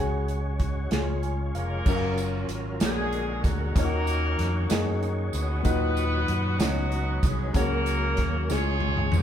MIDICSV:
0, 0, Header, 1, 6, 480
1, 0, Start_track
1, 0, Key_signature, 6, "major"
1, 0, Tempo, 631579
1, 1414, Time_signature, 6, 3, 24, 8
1, 7011, End_track
2, 0, Start_track
2, 0, Title_t, "Grand piano"
2, 0, Program_c, 0, 0
2, 0, Note_on_c, 0, 49, 59
2, 0, Note_on_c, 0, 66, 71
2, 0, Note_on_c, 0, 68, 60
2, 0, Note_on_c, 0, 73, 64
2, 0, Note_on_c, 0, 80, 77
2, 134, Control_c, 0, 64, 127
2, 653, Note_off_c, 0, 66, 0
2, 659, Note_off_c, 0, 68, 0
2, 661, Note_off_c, 0, 73, 0
2, 664, Note_off_c, 0, 80, 0
2, 666, Note_off_c, 0, 49, 0
2, 691, Note_on_c, 0, 65, 54
2, 696, Note_on_c, 0, 68, 47
2, 702, Note_on_c, 0, 49, 49
2, 703, Control_c, 0, 64, 0
2, 703, Note_on_c, 0, 73, 52
2, 714, Note_on_c, 0, 80, 63
2, 850, Control_c, 0, 64, 127
2, 922, Note_off_c, 0, 80, 0
2, 933, Note_on_c, 0, 80, 52
2, 1157, Note_off_c, 0, 80, 0
2, 1177, Note_on_c, 0, 77, 58
2, 1376, Note_off_c, 0, 65, 0
2, 1379, Note_off_c, 0, 68, 0
2, 1382, Note_off_c, 0, 73, 0
2, 1388, Note_off_c, 0, 49, 0
2, 1399, Note_off_c, 0, 77, 0
2, 1416, Note_on_c, 0, 61, 70
2, 1422, Note_on_c, 0, 54, 72
2, 1423, Control_c, 0, 64, 0
2, 1432, Note_on_c, 0, 70, 66
2, 1434, Note_on_c, 0, 76, 69
2, 1474, Note_off_c, 0, 76, 0
2, 1487, Note_on_c, 0, 77, 72
2, 1544, Control_c, 0, 64, 127
2, 2099, Note_off_c, 0, 61, 0
2, 2102, Note_off_c, 0, 54, 0
2, 2107, Note_off_c, 0, 70, 0
2, 2134, Note_off_c, 0, 77, 0
2, 2134, Note_on_c, 0, 58, 55
2, 2145, Note_on_c, 0, 66, 54
2, 2146, Control_c, 0, 64, 0
2, 2149, Note_on_c, 0, 46, 49
2, 2150, Note_on_c, 0, 68, 55
2, 2154, Note_on_c, 0, 73, 62
2, 2255, Control_c, 0, 64, 127
2, 2818, Note_off_c, 0, 58, 0
2, 2823, Note_off_c, 0, 66, 0
2, 2826, Note_off_c, 0, 68, 0
2, 2828, Note_off_c, 0, 73, 0
2, 2832, Note_off_c, 0, 46, 0
2, 2861, Note_on_c, 0, 58, 66
2, 2865, Control_c, 0, 64, 0
2, 2867, Note_on_c, 0, 63, 63
2, 2869, Note_on_c, 0, 51, 60
2, 2874, Note_on_c, 0, 65, 50
2, 2878, Note_on_c, 0, 73, 76
2, 2914, Note_off_c, 0, 65, 0
2, 2922, Note_on_c, 0, 66, 66
2, 2992, Control_c, 0, 64, 127
2, 3541, Note_off_c, 0, 58, 0
2, 3544, Note_off_c, 0, 63, 0
2, 3550, Note_off_c, 0, 73, 0
2, 3552, Note_off_c, 0, 51, 0
2, 3565, Note_off_c, 0, 66, 0
2, 3566, Note_on_c, 0, 58, 68
2, 3570, Note_on_c, 0, 63, 66
2, 3576, Note_on_c, 0, 66, 60
2, 3585, Note_on_c, 0, 68, 75
2, 4254, Note_off_c, 0, 58, 0
2, 4256, Note_off_c, 0, 63, 0
2, 4259, Note_off_c, 0, 66, 0
2, 4263, Note_off_c, 0, 68, 0
2, 4279, Note_on_c, 0, 46, 76
2, 4286, Note_on_c, 0, 63, 62
2, 4288, Note_on_c, 0, 51, 62
2, 4292, Note_on_c, 0, 66, 69
2, 4301, Note_on_c, 0, 71, 84
2, 4305, Control_c, 0, 64, 0
2, 4426, Control_c, 0, 64, 127
2, 4970, Note_off_c, 0, 46, 0
2, 4974, Note_off_c, 0, 63, 0
2, 4977, Note_off_c, 0, 66, 0
2, 4981, Note_off_c, 0, 51, 0
2, 4981, Note_off_c, 0, 71, 0
2, 5008, Note_on_c, 0, 59, 58
2, 5014, Note_on_c, 0, 63, 48
2, 5018, Note_on_c, 0, 61, 57
2, 5024, Note_on_c, 0, 66, 59
2, 5025, Control_c, 0, 64, 0
2, 5031, Note_on_c, 0, 73, 66
2, 5177, Control_c, 0, 64, 127
2, 5695, Note_off_c, 0, 59, 0
2, 5698, Note_off_c, 0, 63, 0
2, 5703, Note_off_c, 0, 66, 0
2, 5706, Note_off_c, 0, 61, 0
2, 5706, Note_off_c, 0, 73, 0
2, 5725, Note_on_c, 0, 58, 68
2, 5734, Note_on_c, 0, 61, 67
2, 5736, Note_on_c, 0, 49, 62
2, 5741, Note_on_c, 0, 66, 73
2, 5745, Note_on_c, 0, 73, 89
2, 5746, Control_c, 0, 64, 0
2, 5886, Control_c, 0, 64, 127
2, 6413, Note_off_c, 0, 58, 0
2, 6418, Note_off_c, 0, 61, 0
2, 6422, Note_off_c, 0, 66, 0
2, 6424, Note_off_c, 0, 73, 0
2, 6425, Note_off_c, 0, 49, 0
2, 6445, Note_on_c, 0, 56, 55
2, 6455, Note_on_c, 0, 61, 50
2, 6459, Note_on_c, 0, 49, 50
2, 6461, Note_on_c, 0, 64, 42
2, 6466, Control_c, 0, 64, 0
2, 6468, Note_on_c, 0, 73, 67
2, 6507, Note_off_c, 0, 64, 0
2, 6511, Note_on_c, 0, 65, 49
2, 6581, Control_c, 0, 64, 127
2, 7011, Note_off_c, 0, 49, 0
2, 7011, Note_off_c, 0, 56, 0
2, 7011, Note_off_c, 0, 61, 0
2, 7011, Note_off_c, 0, 65, 0
2, 7011, Note_off_c, 0, 73, 0
2, 7011, End_track
3, 0, Start_track
3, 0, Title_t, "Horn section"
3, 0, Program_c, 1, 61
3, 1186, Note_on_c, 1, 58, 87
3, 1186, Note_on_c, 1, 70, 95
3, 1191, Note_on_c, 1, 65, 60
3, 1195, Note_on_c, 1, 61, 68
3, 1870, Note_off_c, 1, 58, 0
3, 1870, Note_off_c, 1, 70, 0
3, 1873, Note_off_c, 1, 65, 0
3, 1875, Note_off_c, 1, 61, 0
3, 2150, Note_on_c, 1, 61, 69
3, 2154, Note_on_c, 1, 62, 67
3, 2165, Note_on_c, 1, 56, 92
3, 2165, Note_on_c, 1, 68, 100
3, 2600, Note_off_c, 1, 56, 0
3, 2600, Note_off_c, 1, 68, 0
3, 2628, Note_on_c, 1, 54, 79
3, 2628, Note_on_c, 1, 66, 86
3, 2833, Note_off_c, 1, 61, 0
3, 2834, Note_off_c, 1, 62, 0
3, 2859, Note_off_c, 1, 54, 0
3, 2859, Note_off_c, 1, 66, 0
3, 2863, Note_on_c, 1, 61, 82
3, 2868, Note_on_c, 1, 58, 105
3, 2868, Note_on_c, 1, 66, 82
3, 2868, Note_on_c, 1, 70, 114
3, 3789, Note_off_c, 1, 61, 0
3, 3791, Note_off_c, 1, 66, 0
3, 3822, Note_off_c, 1, 58, 0
3, 3822, Note_off_c, 1, 70, 0
3, 4058, Note_on_c, 1, 66, 81
3, 4066, Note_on_c, 1, 59, 104
3, 4066, Note_on_c, 1, 71, 114
3, 4986, Note_off_c, 1, 66, 0
3, 4990, Note_off_c, 1, 59, 0
3, 4990, Note_off_c, 1, 71, 0
3, 5012, Note_on_c, 1, 59, 74
3, 5014, Note_on_c, 1, 63, 74
3, 5015, Note_on_c, 1, 54, 94
3, 5015, Note_on_c, 1, 66, 102
3, 5495, Note_off_c, 1, 54, 0
3, 5495, Note_off_c, 1, 66, 0
3, 5517, Note_on_c, 1, 56, 84
3, 5517, Note_on_c, 1, 68, 92
3, 5703, Note_off_c, 1, 59, 0
3, 5704, Note_off_c, 1, 63, 0
3, 5744, Note_on_c, 1, 61, 77
3, 5746, Note_off_c, 1, 56, 0
3, 5746, Note_off_c, 1, 68, 0
3, 5747, Note_on_c, 1, 66, 79
3, 5752, Note_on_c, 1, 58, 104
3, 5752, Note_on_c, 1, 70, 114
3, 6429, Note_off_c, 1, 61, 0
3, 6431, Note_off_c, 1, 66, 0
3, 6464, Note_off_c, 1, 58, 0
3, 6464, Note_off_c, 1, 70, 0
3, 6475, Note_on_c, 1, 61, 101
3, 6475, Note_on_c, 1, 73, 110
3, 6477, Note_on_c, 1, 65, 80
3, 6480, Note_on_c, 1, 68, 74
3, 6945, Note_off_c, 1, 61, 0
3, 6945, Note_off_c, 1, 73, 0
3, 6963, Note_on_c, 1, 58, 87
3, 6963, Note_on_c, 1, 70, 94
3, 6969, Note_on_c, 1, 63, 82
3, 6972, Note_on_c, 1, 66, 78
3, 7011, Note_off_c, 1, 58, 0
3, 7011, Note_off_c, 1, 63, 0
3, 7011, Note_off_c, 1, 65, 0
3, 7011, Note_off_c, 1, 66, 0
3, 7011, Note_off_c, 1, 68, 0
3, 7011, Note_off_c, 1, 70, 0
3, 7011, End_track
4, 0, Start_track
4, 0, Title_t, "Tonewheel organ"
4, 0, Program_c, 2, 16
4, 0, Note_on_c, 2, 56, 61
4, 0, Note_on_c, 2, 61, 62
4, 0, Note_on_c, 2, 66, 58
4, 0, Note_on_c, 2, 73, 70
4, 697, Note_off_c, 2, 56, 0
4, 697, Note_off_c, 2, 61, 0
4, 698, Note_off_c, 2, 73, 0
4, 701, Note_off_c, 2, 66, 0
4, 706, Note_on_c, 2, 61, 48
4, 707, Note_on_c, 2, 56, 53
4, 709, Note_on_c, 2, 71, 49
4, 713, Note_on_c, 2, 65, 49
4, 751, Note_off_c, 2, 71, 0
4, 755, Note_on_c, 2, 73, 63
4, 1392, Note_off_c, 2, 65, 0
4, 1396, Note_off_c, 2, 61, 0
4, 1401, Note_on_c, 2, 65, 53
4, 1405, Note_on_c, 2, 61, 52
4, 1410, Note_on_c, 2, 54, 56
4, 1410, Note_on_c, 2, 70, 66
4, 1421, Note_off_c, 2, 56, 0
4, 1445, Note_off_c, 2, 73, 0
4, 2127, Note_off_c, 2, 70, 0
4, 2128, Note_off_c, 2, 65, 0
4, 2130, Note_off_c, 2, 61, 0
4, 2133, Note_off_c, 2, 54, 0
4, 2136, Note_on_c, 2, 66, 47
4, 2137, Note_on_c, 2, 70, 62
4, 2138, Note_on_c, 2, 50, 49
4, 2139, Note_on_c, 2, 56, 52
4, 2843, Note_off_c, 2, 66, 0
4, 2851, Note_on_c, 2, 61, 60
4, 2852, Note_on_c, 2, 63, 55
4, 2852, Note_on_c, 2, 66, 64
4, 2855, Note_on_c, 2, 73, 73
4, 2856, Note_off_c, 2, 70, 0
4, 2857, Note_off_c, 2, 50, 0
4, 2857, Note_off_c, 2, 56, 0
4, 4264, Note_off_c, 2, 61, 0
4, 4265, Note_off_c, 2, 63, 0
4, 4265, Note_off_c, 2, 66, 0
4, 4266, Note_off_c, 2, 73, 0
4, 4280, Note_on_c, 2, 63, 62
4, 4282, Note_on_c, 2, 71, 61
4, 4287, Note_on_c, 2, 54, 68
4, 4290, Note_on_c, 2, 66, 74
4, 4996, Note_off_c, 2, 63, 0
4, 5001, Note_off_c, 2, 71, 0
4, 5005, Note_on_c, 2, 63, 58
4, 5007, Note_off_c, 2, 54, 0
4, 5008, Note_on_c, 2, 61, 51
4, 5011, Note_on_c, 2, 71, 66
4, 5012, Note_off_c, 2, 66, 0
4, 5016, Note_on_c, 2, 54, 56
4, 5730, Note_off_c, 2, 63, 0
4, 5731, Note_off_c, 2, 54, 0
4, 5731, Note_off_c, 2, 61, 0
4, 5733, Note_off_c, 2, 71, 0
4, 5733, Note_on_c, 2, 70, 74
4, 5735, Note_on_c, 2, 58, 65
4, 5740, Note_on_c, 2, 54, 70
4, 5741, Note_on_c, 2, 61, 64
4, 6454, Note_off_c, 2, 70, 0
4, 6455, Note_off_c, 2, 58, 0
4, 6458, Note_off_c, 2, 54, 0
4, 6459, Note_off_c, 2, 61, 0
4, 6464, Note_on_c, 2, 67, 55
4, 6469, Note_on_c, 2, 56, 51
4, 6474, Note_on_c, 2, 49, 55
4, 6475, Note_on_c, 2, 61, 56
4, 6509, Note_off_c, 2, 67, 0
4, 6520, Note_on_c, 2, 68, 61
4, 7011, Note_off_c, 2, 49, 0
4, 7011, Note_off_c, 2, 56, 0
4, 7011, Note_off_c, 2, 61, 0
4, 7011, Note_off_c, 2, 68, 0
4, 7011, End_track
5, 0, Start_track
5, 0, Title_t, "Fingered electric bass"
5, 0, Program_c, 3, 33
5, 0, Note_on_c, 3, 37, 88
5, 663, Note_off_c, 3, 37, 0
5, 690, Note_on_c, 3, 37, 77
5, 1142, Note_off_c, 3, 37, 0
5, 1170, Note_on_c, 3, 29, 74
5, 1393, Note_off_c, 3, 29, 0
5, 1414, Note_on_c, 3, 30, 99
5, 1864, Note_off_c, 3, 30, 0
5, 1885, Note_on_c, 3, 32, 87
5, 2111, Note_off_c, 3, 32, 0
5, 2132, Note_on_c, 3, 34, 97
5, 2583, Note_off_c, 3, 34, 0
5, 2617, Note_on_c, 3, 38, 82
5, 2837, Note_off_c, 3, 38, 0
5, 2855, Note_on_c, 3, 39, 96
5, 3305, Note_off_c, 3, 39, 0
5, 3336, Note_on_c, 3, 41, 96
5, 3557, Note_off_c, 3, 41, 0
5, 3573, Note_on_c, 3, 42, 74
5, 4024, Note_off_c, 3, 42, 0
5, 4053, Note_on_c, 3, 38, 96
5, 4275, Note_off_c, 3, 38, 0
5, 4294, Note_on_c, 3, 39, 99
5, 4744, Note_off_c, 3, 39, 0
5, 4775, Note_on_c, 3, 42, 91
5, 4996, Note_off_c, 3, 42, 0
5, 5009, Note_on_c, 3, 37, 97
5, 5462, Note_off_c, 3, 37, 0
5, 5494, Note_on_c, 3, 36, 80
5, 5715, Note_off_c, 3, 36, 0
5, 5732, Note_on_c, 3, 37, 96
5, 6183, Note_off_c, 3, 37, 0
5, 6216, Note_on_c, 3, 39, 84
5, 6437, Note_off_c, 3, 39, 0
5, 6459, Note_on_c, 3, 37, 87
5, 6907, Note_off_c, 3, 37, 0
5, 6937, Note_on_c, 3, 34, 86
5, 7011, Note_off_c, 3, 34, 0
5, 7011, End_track
6, 0, Start_track
6, 0, Title_t, "Drums"
6, 216, Note_on_c, 9, 42, 50
6, 292, Note_off_c, 9, 42, 0
6, 452, Note_on_c, 9, 42, 76
6, 454, Note_on_c, 9, 36, 78
6, 528, Note_off_c, 9, 42, 0
6, 530, Note_off_c, 9, 36, 0
6, 691, Note_on_c, 9, 42, 74
6, 698, Note_on_c, 9, 38, 93
6, 767, Note_off_c, 9, 42, 0
6, 774, Note_off_c, 9, 38, 0
6, 934, Note_on_c, 9, 42, 43
6, 1010, Note_off_c, 9, 42, 0
6, 1177, Note_on_c, 9, 42, 60
6, 1253, Note_off_c, 9, 42, 0
6, 1412, Note_on_c, 9, 49, 88
6, 1414, Note_on_c, 9, 36, 111
6, 1421, Note_on_c, 9, 54, 59
6, 1488, Note_off_c, 9, 49, 0
6, 1490, Note_off_c, 9, 36, 0
6, 1497, Note_off_c, 9, 54, 0
6, 1654, Note_on_c, 9, 42, 52
6, 1656, Note_on_c, 9, 54, 56
6, 1730, Note_off_c, 9, 42, 0
6, 1732, Note_off_c, 9, 54, 0
6, 1890, Note_on_c, 9, 42, 82
6, 1966, Note_off_c, 9, 42, 0
6, 2130, Note_on_c, 9, 42, 87
6, 2134, Note_on_c, 9, 54, 89
6, 2137, Note_on_c, 9, 38, 105
6, 2206, Note_off_c, 9, 42, 0
6, 2210, Note_off_c, 9, 54, 0
6, 2213, Note_off_c, 9, 38, 0
6, 2376, Note_on_c, 9, 42, 51
6, 2452, Note_off_c, 9, 42, 0
6, 2614, Note_on_c, 9, 36, 89
6, 2616, Note_on_c, 9, 54, 58
6, 2621, Note_on_c, 9, 42, 74
6, 2690, Note_off_c, 9, 36, 0
6, 2692, Note_off_c, 9, 54, 0
6, 2697, Note_off_c, 9, 42, 0
6, 2855, Note_on_c, 9, 36, 109
6, 2856, Note_on_c, 9, 42, 98
6, 2857, Note_on_c, 9, 54, 55
6, 2931, Note_off_c, 9, 36, 0
6, 2932, Note_off_c, 9, 42, 0
6, 2933, Note_off_c, 9, 54, 0
6, 3094, Note_on_c, 9, 54, 55
6, 3098, Note_on_c, 9, 42, 54
6, 3170, Note_off_c, 9, 54, 0
6, 3174, Note_off_c, 9, 42, 0
6, 3335, Note_on_c, 9, 42, 84
6, 3346, Note_on_c, 9, 38, 35
6, 3411, Note_off_c, 9, 42, 0
6, 3422, Note_off_c, 9, 38, 0
6, 3570, Note_on_c, 9, 54, 84
6, 3572, Note_on_c, 9, 42, 96
6, 3580, Note_on_c, 9, 38, 106
6, 3646, Note_off_c, 9, 54, 0
6, 3648, Note_off_c, 9, 42, 0
6, 3656, Note_off_c, 9, 38, 0
6, 3820, Note_on_c, 9, 42, 48
6, 3896, Note_off_c, 9, 42, 0
6, 4051, Note_on_c, 9, 54, 64
6, 4063, Note_on_c, 9, 42, 72
6, 4127, Note_off_c, 9, 54, 0
6, 4139, Note_off_c, 9, 42, 0
6, 4292, Note_on_c, 9, 42, 98
6, 4292, Note_on_c, 9, 54, 59
6, 4295, Note_on_c, 9, 36, 100
6, 4368, Note_off_c, 9, 42, 0
6, 4368, Note_off_c, 9, 54, 0
6, 4371, Note_off_c, 9, 36, 0
6, 4535, Note_on_c, 9, 42, 52
6, 4537, Note_on_c, 9, 54, 61
6, 4611, Note_off_c, 9, 42, 0
6, 4613, Note_off_c, 9, 54, 0
6, 4775, Note_on_c, 9, 42, 81
6, 4851, Note_off_c, 9, 42, 0
6, 5013, Note_on_c, 9, 42, 92
6, 5015, Note_on_c, 9, 54, 89
6, 5020, Note_on_c, 9, 38, 108
6, 5089, Note_off_c, 9, 42, 0
6, 5091, Note_off_c, 9, 54, 0
6, 5096, Note_off_c, 9, 38, 0
6, 5257, Note_on_c, 9, 42, 53
6, 5333, Note_off_c, 9, 42, 0
6, 5494, Note_on_c, 9, 36, 102
6, 5494, Note_on_c, 9, 54, 62
6, 5497, Note_on_c, 9, 42, 78
6, 5570, Note_off_c, 9, 36, 0
6, 5570, Note_off_c, 9, 54, 0
6, 5573, Note_off_c, 9, 42, 0
6, 5733, Note_on_c, 9, 42, 93
6, 5734, Note_on_c, 9, 36, 98
6, 5745, Note_on_c, 9, 54, 56
6, 5809, Note_off_c, 9, 42, 0
6, 5810, Note_off_c, 9, 36, 0
6, 5821, Note_off_c, 9, 54, 0
6, 5974, Note_on_c, 9, 42, 54
6, 5980, Note_on_c, 9, 54, 58
6, 6050, Note_off_c, 9, 42, 0
6, 6056, Note_off_c, 9, 54, 0
6, 6209, Note_on_c, 9, 42, 84
6, 6218, Note_on_c, 9, 36, 82
6, 6220, Note_on_c, 9, 38, 35
6, 6285, Note_off_c, 9, 42, 0
6, 6294, Note_off_c, 9, 36, 0
6, 6296, Note_off_c, 9, 38, 0
6, 6457, Note_on_c, 9, 54, 78
6, 6461, Note_on_c, 9, 38, 59
6, 6533, Note_off_c, 9, 54, 0
6, 6537, Note_off_c, 9, 38, 0
6, 6691, Note_on_c, 9, 48, 73
6, 6767, Note_off_c, 9, 48, 0
6, 6815, Note_on_c, 9, 47, 70
6, 6891, Note_off_c, 9, 47, 0
6, 6929, Note_on_c, 9, 45, 95
6, 6942, Note_on_c, 9, 54, 55
6, 7005, Note_off_c, 9, 45, 0
6, 7011, Note_off_c, 9, 54, 0
6, 7011, End_track
0, 0, End_of_file